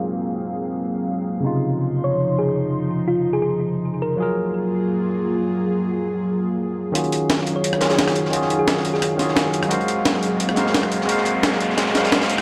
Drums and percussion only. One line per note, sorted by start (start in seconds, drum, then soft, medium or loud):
6.95 closed hi-hat medium
7.04 closed hi-hat soft
7.12 closed hi-hat medium
7.29 snare loud
7.29 closed hi-hat medium
7.38 snare soft
7.46 closed hi-hat medium
7.64 closed hi-hat medium
7.73 cross-stick medium
7.81 snare loud
7.81 snare soft
7.81 closed hi-hat medium
7.90 snare loud
7.90 closed hi-hat medium
7.98 snare loud
7.98 closed hi-hat medium
8.06 cross-stick soft
8.06 snare loud
8.06 closed hi-hat medium
8.15 closed hi-hat medium
8.25 snare soft
8.33 closed hi-hat medium
8.42 snare soft
8.50 closed hi-hat medium
8.67 snare loud
8.67 closed hi-hat medium
8.77 snare medium
8.85 closed hi-hat medium
8.94 snare soft
9.02 cross-stick soft
9.02 closed hi-hat medium
9.19 snare soft
9.19 closed hi-hat medium
9.28 snare soft
9.36 snare loud
9.36 closed hi-hat medium
9.46 snare soft
9.53 closed hi-hat medium
9.63 cross-stick medium
9.63 closed hi-hat soft
9.71 closed hi-hat medium
9.81 closed hi-hat soft
9.88 closed hi-hat medium
10.05 snare loud
10.05 closed hi-hat medium
10.14 snare soft
10.23 closed hi-hat medium
10.40 closed hi-hat medium
10.49 cross-stick medium
10.56 snare soft
10.56 closed hi-hat medium
10.66 snare medium
10.74 snare loud
10.74 closed hi-hat medium
10.83 cross-stick medium
10.92 closed hi-hat medium
11.01 snare soft
11.09 closed hi-hat medium
11.17 snare soft
11.25 closed hi-hat medium
11.43 snare loud
11.43 closed hi-hat medium
11.52 snare medium
11.61 closed hi-hat medium
11.70 snare soft
11.77 cross-stick soft
11.77 snare loud
11.77 closed hi-hat medium
11.86 snare soft
11.95 snare soft
11.95 snare loud
11.95 closed hi-hat medium
12.04 snare loud
12.04 closed hi-hat medium
12.12 snare loud
12.12 closed hi-hat medium
12.21 snare loud
12.21 closed hi-hat medium
12.30 closed hi-hat medium
12.38 cross-stick medium
12.38 closed hi-hat soft